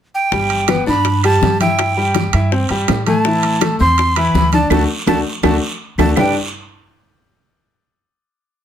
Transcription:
0.15 0.84 G5 medium
0.32 0.83 G1 medium
0.32 0.62 G3 medium
0.32 0.62 G4 medium
0.32 high bongo medium
0.32 high conga soft
0.32 long guiro medium
0.50 high conga soft
0.50 high timbale medium
0.68 0.84 B3 medium
0.68 0.84 B4 medium
0.68 high bongo medium
0.68 high conga medium
0.68 high timbale medium
0.68 short guiro medium
0.68 claves medium
0.86 1.38 G2 medium
0.86 1.17 D4 medium
0.86 1.17 D5 medium
0.86 1.22 B5 medium
0.86 high bongo soft
0.86 high conga soft
0.86 short guiro medium
1.05 high bongo medium
1.05 high conga soft
1.05 high timbale medium
1.05 long guiro medium
1.23 1.54 G3 medium
1.23 1.54 G4 medium
1.23 1.58 A5 medium
1.23 high bongo soft
1.23 high conga soft
1.23 high timbale medium
1.23 claves medium
1.41 2.28 G2 medium
1.41 high bongo soft
1.41 low bongo medium
1.41 high conga medium
1.41 short guiro medium
1.60 1.90 E4 medium
1.60 1.91 E5 medium
1.60 2.66 G5 medium
1.60 high bongo soft
1.60 high conga medium
1.60 high timbale medium
1.60 short guiro medium
1.78 high bongo medium
1.78 high conga soft
1.78 high timbale medium
1.78 long guiro medium
1.78 claves medium
1.97 2.27 G3 medium
1.97 2.27 G4 medium
1.97 high conga soft
2.15 high bongo medium
2.15 high conga medium
2.15 high timbale medium
2.15 short guiro medium
2.33 2.67 G2 medium
2.33 2.49 E4 medium
2.33 2.49 E5 medium
2.33 high bongo soft
2.33 high conga soft
2.33 high timbale medium
2.33 short guiro medium
2.33 claves medium
2.52 2.67 C4 medium
2.52 2.67 C5 medium
2.52 high bongo medium
2.52 high conga soft
2.52 long guiro medium
2.69 2.87 G2 medium
2.69 3.00 G3 medium
2.69 3.00 G4 medium
2.69 high bongo soft
2.69 high conga soft
2.69 high timbale medium
2.88 3.74 A2 medium
2.88 high bongo soft
2.88 low bongo medium
2.88 high conga soft
2.88 high timbale medium
2.88 low timbale medium
2.88 short guiro medium
2.88 claves medium
3.06 3.22 A3 medium
3.06 3.22 A4 medium
3.06 3.76 A5 medium
3.06 high bongo soft
3.06 high conga medium
3.06 high timbale medium
3.06 short guiro medium
3.25 3.55 E3 medium
3.25 3.56 E4 medium
3.25 high bongo medium
3.25 high conga soft
3.25 long guiro medium
3.43 high conga soft
3.43 high timbale medium
3.61 3.77 A3 medium
3.61 3.76 A4 medium
3.61 high bongo medium
3.61 high conga medium
3.61 high timbale medium
3.61 short guiro medium
3.61 claves medium
3.79 4.31 E2 medium
3.79 4.10 C4 medium
3.79 4.10 C5 medium
3.79 4.18 C6 loud
3.79 high bongo soft
3.79 high conga soft
3.79 short guiro medium
3.98 high bongo medium
3.98 high conga soft
3.98 high timbale medium
3.98 long guiro medium
4.16 4.47 E3 medium
4.16 4.47 E4 medium
4.16 4.53 B5 medium
4.16 high bongo soft
4.16 high conga soft
4.16 high timbale medium
4.16 claves medium
4.34 4.68 D2 medium
4.34 high bongo soft
4.34 low bongo medium
4.34 high conga medium
4.34 short guiro medium
4.52 4.68 D4 medium
4.52 4.68 D5 medium
4.52 4.70 A5 medium
4.52 high bongo soft
4.52 high conga medium
4.52 high timbale medium
4.52 short guiro medium
4.70 4.84 D2 medium
4.70 4.83 A3 medium
4.70 4.83 D4 medium
4.70 4.83 F#4 medium
4.70 4.83 A5 medium
4.70 high bongo medium
4.70 high conga medium
4.70 high timbale medium
4.70 long guiro medium
4.70 claves loud
5.06 5.21 D2 medium
5.06 5.19 A3 medium
5.06 5.19 D4 medium
5.06 5.19 F#4 medium
5.06 5.20 A5 medium
5.06 high bongo medium
5.06 high conga medium
5.06 high timbale loud
5.06 long guiro medium
5.06 claves loud
5.43 5.58 D2 medium
5.43 5.56 A3 medium
5.43 5.56 D4 medium
5.43 5.56 F#4 medium
5.43 5.56 A5 medium
5.43 high bongo medium
5.43 high conga loud
5.43 high timbale loud
5.43 long guiro medium
5.43 claves loud
5.98 6.12 D2 medium
5.98 6.11 A3 medium
5.98 6.11 D4 medium
5.98 6.11 F#4 medium
5.98 6.11 A5 medium
5.98 high bongo medium
5.98 high conga medium
5.98 high timbale medium
5.98 long guiro medium
5.98 claves medium
6.16 6.34 G1 medium
6.16 6.34 G3 medium
6.16 6.34 D4 medium
6.16 6.34 G4 medium
6.16 6.34 B4 medium
6.16 6.34 D5 medium
6.16 6.35 G5 medium
6.16 low bongo loud
6.16 low conga medium
6.16 low timbale medium
6.16 long guiro medium
6.16 claves medium

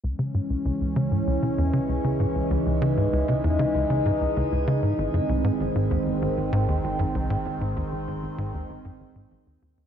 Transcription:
0.03 0.14 C#2 medium
0.03 4.95 C#2 medium
0.03 4.94 E3 medium
0.03 9.87 G#3 medium
0.03 2.48 C#4 medium
0.19 0.34 C#3 medium
0.34 0.41 G#2 medium
0.50 0.56 C#2 medium
0.65 0.72 C#2 medium
0.81 0.95 C#2 medium
0.96 1.11 C#3 loud
1.11 1.22 G#2 medium
1.27 1.38 C#2 loud
1.42 1.49 C3 medium
1.58 1.73 E2 loud
1.73 1.80 C#3 medium
1.89 2.00 C#2 medium
2.04 2.19 C#3 medium
2.20 2.26 G#2 medium
2.35 2.42 C#2 medium
2.50 2.57 C#2 loud
2.50 4.96 D#4 medium
2.66 2.81 C#2 medium
2.82 2.96 C#3 loud
2.97 3.08 G#2 medium
3.13 3.24 C#2 loud
3.28 3.35 C3 medium
3.44 3.58 E2 medium
3.59 3.66 C#3 medium
3.75 3.85 C#2 medium
3.90 4.05 C#3 medium
4.06 4.12 G#2 medium
4.21 4.27 C#2 medium
4.37 4.43 C#2 medium
4.52 4.67 C#2 medium
4.67 4.82 C#3 loud
4.83 4.93 G#2 medium
4.98 5.09 G#1 loud
4.98 9.87 G#1 medium
4.98 9.87 D#3 medium
4.98 9.87 C4 medium
5.14 5.20 F#2 medium
5.29 5.44 C2 loud
5.44 5.51 G#2 loud
5.60 5.71 G#1 medium
5.75 5.90 G#2 medium
5.91 5.97 D#2 medium
6.06 6.13 G#1 medium
6.22 6.28 G#1 loud
6.37 6.52 G#1 medium
6.52 6.67 G#2 loud
6.68 6.79 D#2 medium
6.84 6.95 G#1 medium
6.99 7.06 F#2 medium
7.14 7.29 C2 medium
7.30 7.37 G#2 loud
7.45 7.56 G#1 medium
7.61 7.76 G#2 medium
7.76 7.83 D#2 medium
7.92 7.98 G#1 medium
8.08 8.14 G#1 loud
8.23 8.38 G#1 medium
8.38 8.53 G#2 loud
8.54 8.65 D#2 medium
8.70 8.80 G#1 medium
8.85 8.91 F#2 medium
9.00 9.11 G#1 medium
9.15 9.26 G#2 medium
9.31 9.42 G#1 medium
9.47 9.57 D#2 medium
9.62 9.77 D#2 loud
9.77 9.87 D#2 loud

